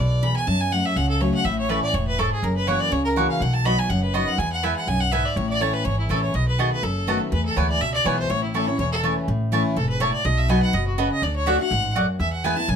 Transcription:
Already playing: B1
0.00 B2 D5
0.23 E2 B5
0.36 G#5
0.47 F#2 A5
0.61 G#5
0.71 F#3 A3 C#4 F#4 F#5
0.86 E5
0.96 C#2 C#3 F#5
1.09 A4
1.20 F#3 A3 C#4 F#4 C#5
1.34 F#5
1.45 A1 A2 E5
1.59 C#5
1.69 E3 A3 C#4 E4 B4 C#5 A5
1.82 D5
1.93 E1 A2 C#5
2.08 B4
2.19 G#2 A3 E4 A4 C#5 A5
2.32 G#4
2.43 F#1 F#2 A#4
2.56 B4
2.67 E3 A#3 C#4 E4 F#4 C#5 F#5
2.80 D5
2.91 C#2 C#3 C#5
3.05 A#4
3.16 E3 A#3 C#4 E4 F#4 C#5 F#5
3.30 F5
3.40 B1 B2 F#5
3.54 A5
3.65 F#3 B3 D#4 F#4 D#5 B5
3.79 G#5
3.89 F#1 F#2 F#5
4.03 B4
4.14 F#3 B3 D#4 F#4 D#5 B5
4.28 F#5
4.38 E2 G#5
4.52 F#5
4.63 E3 G#3 B3 E4 B4 E5 G#5
4.76 F#5
4.87 B1 F#2 G#5
5.00 F#5
5.12 G#2 B3 E4 B4 E5 G#5
5.25 D5
5.36 A1 A2 C#5
5.49 D5
5.60 E3 A3 C#4 E4 C#5 A5
5.74 B4
5.85 G#1 E2 C#5
5.99 E4
6.09 A1 E3 A3 C#4 E4 A4 C#5 A5
6.23 C#5
6.34 B1 B2 D#5
6.48 B4
6.59 D#3 A3 B3 F#4 G#4 D#5 A5
6.72 B4
6.83 F#1 F#2 A4
7.07 D#3 A3 B3 F#4 D#5 A5
7.32 E2 B4
7.45 A4
7.56 D2 E3 G#3 B3 E4 B4 C#5 G#5
7.70 D5
7.81 C#2 B2 E5
7.94 D5
8.04 B1 E3 G#3 B3 E4 B4 C#5 G#5
8.19 C5
8.30 A1 A2 C#5
8.44 E4
8.54 E3 A3 C#4 E4 A4 C#5 A5
8.67 C#4 E4 C#5
8.79 E1 E2 C#5
8.92 A4
9.03 E3 A3 C#4 E4 C#5 A5
9.28 A1 A2
9.52 E3 A3 C#4 E4 C#5 A5
9.76 E1 G#2 A4
9.89 B4
10.00 A2 A3 E4 C#5 A5
10.14 D5
10.25 B1 B2 D#5
10.38 E5
10.48 F#3 B3 D#4 F#4 D#5 G#5 B5
10.62 F#5
10.73 F#1 B2 D#5
10.88 F#4
10.98 C#3 B3 F#4 B4 D#5 B5
11.12 D#5
11.22 D2 D3 D5
11.36 C#5
11.46 D3 A3 D4 F#4 D5 E5 F#5
11.59 D4 F#4 F#5
11.71 A1 G#2
11.95 F#2 A3 F#4 D5 F#5
12.20 E2 E5
12.33 F#5
12.44 E3 G#3 B3 E4 B4 G#5
12.56 B3 E4 A5
12.68 B1 F#2 G#5

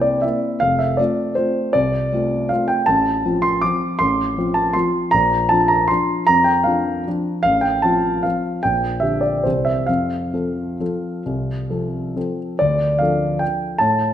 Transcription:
Already playing: C2 A#3 C4 E4 G5
0.01 D5
0.22 A#3 C4 E4 E5
0.60 F1 F5
0.79 E5
0.97 A3 C4 F4 D5
1.35 A3 C4 F4 C5
1.73 C2 D5
2.13 A3 C4 F4
2.49 A3 C4 F4 F5
2.68 G5
2.86 A1 A5
3.26 F3 C4 F4
3.42 C6
3.62 F3 C4 F4 D6
3.99 A1 C6
4.38 F3 C4 F4
4.54 A5
4.73 F3 C4 F4 C6
5.11 A#1 A#5
5.49 F3 D4 F4 A5
5.68 A#5
5.88 F3 D4 F4 C6
6.27 F2 A#5
6.44 G5
6.64 F3 D4 F4 F5
7.07 F3 D4 F4
7.43 A1 F5
7.61 G5
7.82 F3 C4 F4 A5
8.23 F3 C4 F4 F5
8.63 A#1 G5
9.00 D3 D4 G4 E5
9.21 D5
9.43 C2 E3 C4 G4 C5
9.65 E5
9.86 F2 F5
10.34 F3 C4 A4
10.80 F3 C4 A4
11.26 C2
11.70 F3 C4 A4
12.16 F3 C4 A4
12.59 D2 D5
12.99 F3 D4 A4 F5
13.39 G5
13.78 A2 A5

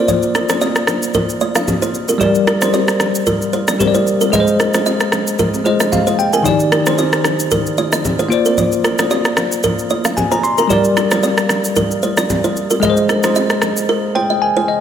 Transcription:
Already playing: A#3 F4 C5 D5
0.08 D5, low conga, shaker
0.22 shaker
0.35 A#4, cross-stick, low bongo, shaker
0.49 C5, cross-stick, low bongo, shaker
0.61 D5, high bongo, shaker
0.75 cross-stick, shaker
0.87 cross-stick, low bongo, shaker
1.02 shaker
1.14 A#4, low conga, shaker
1.29 shaker
1.41 D5, shaker
1.55 F5, cross-stick, low bongo, shaker
1.68 high bongo, low conga, shaker
1.82 C5, shaker
1.95 shaker
2.08 A#4, high bongo, shaker
2.18 G3 G4 A#4 D5, low conga, shaker
2.23 D5
2.35 shaker
2.47 A#4, cross-stick, low bongo, shaker
2.62 C5, cross-stick, low bongo, shaker
2.74 D5, high bongo, shaker
2.88 cross-stick, shaker
3.00 cross-stick, low bongo, shaker
3.15 shaker
3.26 A#4, low conga, shaker
3.42 shaker
3.53 C5, shaker
3.68 D5, cross-stick, low bongo, shaker
3.79 G3 G4 A#4 C5, high bongo, low conga, shaker
3.88 D5
3.95 C5, shaker
4.07 shaker
4.21 A#4, high bongo, shaker
4.30 G#3 G#4 B4 D#5, low conga, shaker
4.35 D#5
4.40 C5
4.47 shaker
4.60 A#4, cross-stick, low bongo, shaker
4.74 C5, cross-stick, low bongo, shaker
4.86 D#5, high bongo, shaker
5.00 cross-stick, shaker
5.12 cross-stick, low bongo, shaker
5.27 shaker
5.39 A#4, low conga, shaker
5.54 high bongo, shaker
5.64 G#3 G#4 C5 D#5, shaker
5.80 D#5, cross-stick, low bongo, shaker
5.92 F5, high bongo, low conga, shaker
6.07 C5, shaker
6.19 G5, shaker
6.33 A#4 G#5, high bongo, shaker
6.43 D#3 D#4 G4 D5, low conga, shaker
6.48 D5
6.60 shaker
6.72 A#4, cross-stick, low bongo, shaker
6.86 C5, cross-stick, low bongo, shaker
6.98 D5, high bongo, shaker
7.13 cross-stick, shaker
7.24 cross-stick, low bongo, shaker
7.39 shaker
7.51 A#4, low conga, shaker
7.66 shaker
7.78 D5, shaker
7.92 D#5, cross-stick, low bongo, shaker
8.05 high bongo, low conga, shaker
8.19 C5, shaker
8.29 A#3 F4 C5, shaker
8.33 D5
8.45 A#4, high bongo, shaker
8.58 D5, low conga, shaker
8.72 shaker
8.84 A#4, cross-stick, low bongo, shaker
8.99 C5, cross-stick, low bongo, shaker
9.11 D5, high bongo, shaker
9.25 cross-stick, shaker
9.37 cross-stick, low bongo, shaker
9.52 shaker
9.63 A#4, low conga, shaker
9.79 shaker
9.90 D5, shaker
10.05 F5, cross-stick, low bongo, shaker
10.17 G#5, high bongo, low conga, shaker
10.32 C5 A#5, shaker
10.44 C6, shaker
10.58 A#4 A#5, high bongo, shaker
10.68 G3 G4 A#4 D5, low conga, shaker
10.73 D5
10.84 shaker
10.97 A#4, cross-stick, low bongo, shaker
11.11 C5, cross-stick, low bongo, shaker
11.23 D5, high bongo, shaker
11.37 cross-stick, shaker
11.49 cross-stick, low bongo, shaker
11.64 shaker
11.76 A#4, low conga, shaker
11.91 shaker
12.02 C5, shaker
12.17 D5, cross-stick, low bongo, shaker
12.30 high bongo, low conga, shaker
12.44 C5, shaker
12.57 shaker
12.70 A#4, high bongo, shaker
12.80 G#3 G#4 A#4 D#5, low conga, shaker
12.85 D#5
12.90 C5
12.97 shaker
13.09 A#4, cross-stick, low bongo, shaker
13.23 C5, cross-stick, low bongo, shaker
13.35 D#5, high bongo, shaker
13.50 cross-stick, shaker
13.62 cross-stick, low bongo, shaker
13.77 shaker
13.89 A#4
14.15 C5 G5
14.30 D#5
14.42 G#5
14.57 C5
14.68 D#5

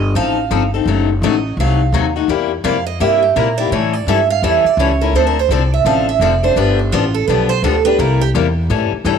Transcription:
Already playing: G1 D#5
0.15 A1 F3 C4 D#4 A4 F5
0.51 G1 F3 C4 D#4 A4
0.74 C4 D#4 A4
0.86 F#1 C3 F#3 A3 D#4 F#4
1.22 A1 C3 F#3 A3 D#4 F#4 D#5
1.57 C2 C3 F#3 A3 D#4 F#4 F5
1.92 D#2 C3 F#3 A3 D#4 F#4
2.16 A3 D#4 F#4
2.28 E2 C3 G3 A#3 E4 G4
2.64 F2 C3 G3 A#3 E4 G4 F5
2.87 D#5
3.00 G2 C3 G3 A#3 E4 G4 E5
3.23 G4
3.36 A#2 C3 G3 A#3 E4 G4 A#4
3.58 A#3 E4 G4 D5
3.71 A2 E3 G3 C#4 E4 A4 C#5
3.93 D5
4.07 G2 E3 G3 C#4 E4 A4 E5
4.30 F5
4.42 E2 E3 G3 C#4 E4 A4 E5
4.65 D5, muted upright bass stroke
4.77 C#2 E3 G3 C#4 E4 A4 C#5
5.01 C#4 E4 A4 A#4
5.13 D2 D3 F3 C4 D4 A4 C5
5.27 A#4
5.39 C5
5.49 C2 D3 F3 C4 D4 A4 D5
5.74 E5
5.85 A1 D3 F3 C4 D4 A4 F5
6.09 E5
6.20 F1 D3 F3 C4 D4 A4 D5
6.43 C4 D4 A4 C5
6.56 G1 D3 F3 B3 D4 G4 B4
6.79 D4
6.92 A1 D3 F3 B3 D4 F4 G4
7.14 A4
7.28 B1 D3 F3 B3 D4 G4 B4
7.49 C5
7.62 D2 D3 F3 B3 D4 G4 A4
7.85 B3 D4 G4 B4
7.99 C2 C3 G3 A#3 E4 G4 A#4
8.21 G4
8.35 E2 C3 G3 A#3 E4 G4
8.70 A2 E3 G3 C#4 E4 A4
8.92 muted upright bass stroke
9.05 G2 E3 G3 C#4 E4 A4 G5

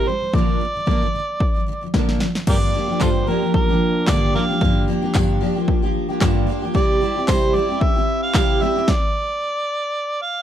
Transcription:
0.06 C3 G3 C5
0.21 C3 G3
0.34 A#2 D3 F3 A#3 D4 A#4 D5, kick
0.60 A#2 D3 F3
0.74 A#2 D3 F3
0.86 A#2 D3 F3 A#3 D4 A#4, kick
1.01 A#2 D3 F3
1.13 A#2 D3 F3
1.40 kick
1.55 A#2 D3 F3
1.67 A#2 D3 F3
1.81 A#2 D3 F3
1.94 A#2 D3 F3 A#3 D4 A#4, kick, snare
2.09 snare
2.20 A#2 D3 F3, snare
2.35 A#2 D3 F3, snare
2.47 G2 D3 F3 A#3 D4 G4 A#4 D5, kick, crash
2.73 F3 A#3 D4 G4
2.88 F3 A#3 D4 G4
3.00 G2 D3 F3 A#3 D4 F4 G4 A4 C5, kick, clap, tambourine
3.26 F3 A#3 D4 G4 A#4
3.41 F3 A#3 D4 G4
3.54 A#4, kick
3.68 F3 A#3 D4 G4
4.07 G2 D3 F3 A#3 D4 G4 D5, kick, clap, tambourine
4.34 F3 A#3 D4 G4 A#4 D5 F5
4.49 F3 A#3 D4 G4
4.61 G2 D3 F3 A#3 D4 G4, kick
4.87 F3 A#3 D4 G4
5.02 F3 A#3 D4 G4
5.14 G2 D3 F3 A#3 D4 G4, kick, clap, tambourine
5.41 F3 A#3 D4 G4
5.55 F3 A#3 D4 G4
5.68 kick
5.82 F3 A#3 D4 G4
6.08 F3 A#3 D4 G4
6.20 G2 D3 F3 A#3 D4 G4, kick, clap, tambourine
6.47 F3 A#3 D4 G4
6.62 F3 A#3 D4 G4
6.74 C3 G3 C4 E4 G4 D5, kick
7.01 G3 C4 E4 G4
7.15 C4 E4 G4
7.28 C3 G3 C4 E4 G4 C5, kick, clap, tambourine
7.54 G3 C4 E4 G4 D5
7.69 C4 E4 G4
7.81 E5, kick
7.95 C4 E4 G4
8.23 F5
8.34 C3 G3 C4 E4 G4, kick, clap, tambourine
8.61 G3 C4 E4 G4 E5
8.76 C4 E4 G4
8.88 D5, kick, snare
10.22 F5

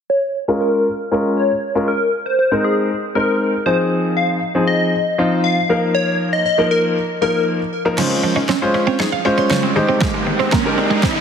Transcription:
0.10 C#5
0.48 G#3 C#4 F4 A#4
0.61 A#4
1.11 G#3 C#4 F4 A#4
1.37 C#5
1.75 G#3 C#4 F4 A#4
1.88 A#4
2.26 C5
2.39 C5
2.51 G#3 C4 D#4 A#4
2.64 G#4
3.15 G#3 C4 D#4 A#4
3.66 F3 C4 D#4 G#4 C5
4.17 F5
4.55 F3 C4 D#4 G#4
4.67 D#5
5.18 F3 C4 D#4 F4
5.44 F5
5.69 F3 A#3 D#4 A#4
5.95 C#5
6.33 D#5
6.46 D#5
6.58 F3 A#3 D#4 A#4
6.71 A#4
7.21 F3 A#3 D#4 A#4
7.85 F3 A#3 D#4 A#4
7.98 C#3 G#3 C#4 F4 C5, snare, crash, riser
8.11 C4
8.23 F3, muted clean electric guitar stroke
8.36 C#4 D#4
8.49 C4 C#4, snare
8.62 G#3 C#4 F4 C5
8.74 C#4, muted clean electric guitar stroke
8.87 C4 C#5
9.00 D#4 G#4, snare
9.12 F5, muted clean electric guitar stroke
9.25 G#3 C#4 F4 C5 C#5
9.38 C#4 C6
9.50 C#3 C#4, snare
9.63 C4
9.76 D#3 G#3 D#4 G4 C5, muted clean electric guitar stroke
9.89 C4
10.01 G#2 G#3, kick, snare
10.14 G#3
10.27 D#3, muted clean electric guitar stroke
10.39 C4
10.52 G#3 A#3, kick, snare
10.65 G#3 D#4 G4 A#4
10.77 C4, muted clean electric guitar stroke
10.90 G#3 G#4
11.03 C4 G4, kick, snare
11.16 D#5, muted clean electric guitar stroke

